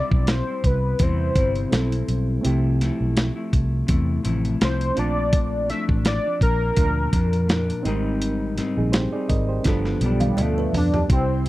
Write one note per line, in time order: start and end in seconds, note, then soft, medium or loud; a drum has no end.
0.00 0.48 G3 medium
0.00 1.66 G3 medium
0.00 0.47 C4 medium
0.00 1.67 C4 medium
0.00 0.46 E4 medium
0.00 1.68 E4 medium
0.00 1.69 G4 medium
0.00 0.32 D5 medium
0.11 0.40 B1 medium
0.11 kick medium
0.27 0.68 C5 loud
0.27 snare loud
0.27 closed hi-hat medium
0.47 0.99 G3 soft
0.47 1.00 C4 soft
0.47 1.00 E4 soft
0.64 0.93 C2 medium
0.64 1.04 B4 medium
0.64 kick medium
0.64 closed hi-hat medium
0.99 1.29 E2 medium
0.99 1.35 C3 medium
0.99 1.36 G3 medium
0.99 1.37 C4 medium
0.99 1.37 E4 medium
0.99 1.73 C5 medium
0.99 kick medium
0.99 closed hi-hat medium
1.36 1.65 G1 loud
1.36 1.72 C3 medium
1.36 1.73 G3 medium
1.36 1.73 C4 medium
1.36 1.73 E4 medium
1.36 kick medium
1.36 closed hi-hat medium
1.55 closed hi-hat soft
1.69 2.01 B1 medium
1.69 2.43 G3 soft
1.69 2.42 C4 soft
1.69 2.44 E4 soft
1.69 2.44 A4 medium
1.69 snare loud
1.69 closed hi-hat medium
1.74 2.45 G3 medium
1.74 2.46 C4 medium
1.74 2.47 E4 medium
1.92 closed hi-hat medium
2.08 2.37 B1 medium
2.08 closed hi-hat medium
2.41 2.89 C2 loud
2.41 2.81 C3 medium
2.41 4.91 A3 medium
2.41 4.92 C4 medium
2.41 4.93 E4 medium
2.41 closed hi-hat medium
2.46 2.80 F3 medium
2.46 2.80 A3 medium
2.46 2.81 E4 medium
2.46 4.94 G4 medium
2.81 3.37 F3 medium
2.81 3.36 A3 medium
2.81 3.34 E4 medium
2.81 snare soft
2.81 closed hi-hat medium
3.00 3.29 B1 medium
3.17 snare loud
3.17 closed hi-hat medium
3.36 3.89 F3 soft
3.36 3.87 A3 soft
3.36 3.88 E4 medium
3.53 3.82 C2 medium
3.53 kick medium
3.53 closed hi-hat medium
3.87 4.17 E2 loud
3.87 4.22 C3 medium
3.87 4.24 A3 medium
3.87 4.24 E4 medium
3.87 kick loud
3.87 closed hi-hat loud
4.23 4.54 A1 medium
4.23 4.59 C3 medium
4.23 4.60 F3 medium
4.23 4.61 A3 medium
4.23 4.61 E4 medium
4.23 closed hi-hat medium
4.45 closed hi-hat soft
4.60 4.90 C2 medium
4.60 4.96 C3 medium
4.60 4.96 F3 medium
4.60 4.96 A3 medium
4.60 4.97 E4 medium
4.60 5.00 C5 medium
4.60 snare loud
4.60 closed hi-hat medium
4.81 closed hi-hat medium
4.94 5.71 A#1 loud
4.94 5.69 A#2 medium
4.94 5.68 F3 medium
4.94 5.69 A3 medium
4.94 7.80 C4 medium
4.94 7.81 D4 medium
4.94 5.69 D4 medium
4.94 7.82 F4 medium
4.94 closed hi-hat medium
4.99 5.69 D5 loud
4.99 7.82 A5 medium
5.33 kick loud
5.33 closed hi-hat loud
5.69 6.25 F3 medium
5.69 6.25 A3 medium
5.69 6.23 D4 medium
5.69 5.84 E5 loud
5.69 snare soft
5.69 closed hi-hat medium
5.89 6.18 A1 medium
5.89 kick medium
6.05 6.40 D5 loud
6.05 snare loud
6.05 closed hi-hat medium
6.25 6.76 F3 soft
6.25 6.77 D4 medium
6.41 6.70 A#1 loud
6.41 7.82 A#4 medium
6.41 kick medium
6.41 closed hi-hat medium
6.76 7.06 D2 loud
6.76 7.12 A#2 medium
6.76 7.12 F3 medium
6.76 7.13 D4 medium
6.76 kick medium
6.76 closed hi-hat medium
7.13 7.71 F2 medium
7.13 7.47 A#2 medium
7.13 7.47 F3 medium
7.13 7.49 D4 medium
7.13 kick medium
7.13 closed hi-hat medium
7.33 closed hi-hat medium
7.48 7.85 A#2 medium
7.48 7.85 F3 medium
7.48 7.86 D4 medium
7.48 snare loud
7.48 closed hi-hat medium
7.70 closed hi-hat medium
7.83 8.59 G#1 loud
7.83 8.56 G#2 medium
7.83 8.57 G3 medium
7.83 9.61 C4 medium
7.83 8.57 C4 medium
7.83 8.56 D#4 medium
7.83 8.57 D#4 loud
7.83 8.56 G4 medium
7.83 closed hi-hat medium
7.88 8.57 A#4 medium
8.22 closed hi-hat loud
8.57 9.13 G#2 medium
8.57 9.13 G3 medium
8.57 9.13 C4 medium
8.57 9.11 D#4 medium
8.57 snare soft
8.57 closed hi-hat medium
8.77 9.06 A#1 medium
8.77 8.93 D#4 medium
8.77 8.93 G#4 medium
8.92 9.12 G4 medium
8.92 9.12 C5 medium
8.92 snare loud
8.92 closed hi-hat medium
9.13 9.66 G3 soft
9.13 9.66 C4 medium
9.13 9.65 D#4 medium
9.13 9.29 G#4 medium
9.13 9.28 D5 medium
9.29 9.59 G#1 medium
9.29 9.48 A#4 medium
9.29 9.48 D#5 medium
9.29 kick medium
9.29 closed hi-hat medium
9.49 9.83 G4 medium
9.49 9.83 C5 medium
9.63 9.94 G1 medium
9.63 10.00 G2 medium
9.63 10.01 F3 medium
9.63 11.06 B3 medium
9.63 11.06 D4 medium
9.63 11.07 F4 medium
9.63 kick medium
9.63 snare medium
9.63 closed hi-hat loud
9.68 10.01 B3 medium
9.68 10.02 D4 medium
9.68 11.08 A4 medium
9.85 snare soft
10.01 10.30 B1 loud
10.01 10.37 G2 medium
10.01 10.38 F3 medium
10.01 10.38 B3 medium
10.01 10.38 D4 medium
10.01 closed hi-hat medium
10.05 10.43 G3 medium
10.20 10.36 F5 medium
10.20 closed hi-hat medium
10.20 high tom medium
10.37 10.66 D2 medium
10.37 11.10 G2 medium
10.37 11.10 F3 medium
10.37 11.10 B3 medium
10.37 11.11 D4 medium
10.37 10.56 D5 medium
10.37 closed hi-hat medium
10.37 mid tom medium
10.41 10.75 A3 medium
10.58 10.92 B4 medium
10.73 11.02 F2 medium
10.73 floor tom loud
10.73 open hi-hat medium
10.77 11.09 D4 loud
10.94 11.28 G4 medium
10.94 floor tom medium
11.07 11.49 C2 loud
11.07 11.49 C3 medium
11.07 11.49 G3 medium
11.07 11.49 C4 medium
11.07 11.49 E4 medium
11.07 11.49 C5 medium
11.07 11.49 G5 medium
11.07 11.49 C6 medium
11.07 kick loud
11.07 closed hi-hat medium
11.12 11.44 C4 loud
11.12 11.49 E4 medium
11.12 11.49 G4 medium
11.46 closed hi-hat medium